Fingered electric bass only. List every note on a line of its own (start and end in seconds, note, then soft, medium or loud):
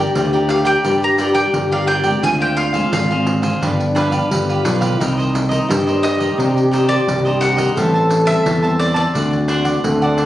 0.16 0.75 D2 medium
0.85 1.44 G2 medium
1.53 2.13 G1 medium
2.23 2.82 D2 medium
2.93 3.52 G#1 medium
3.62 4.21 G1 medium
4.31 4.62 G1 medium
4.65 4.97 B1 medium
5.00 5.59 C2 medium
5.70 6.29 G2 medium
6.39 6.98 C3 medium
7.08 7.67 C2 medium
7.77 8.36 A1 medium
8.46 9.05 E2 medium
9.15 9.74 D2 medium
9.84 10.26 D2 medium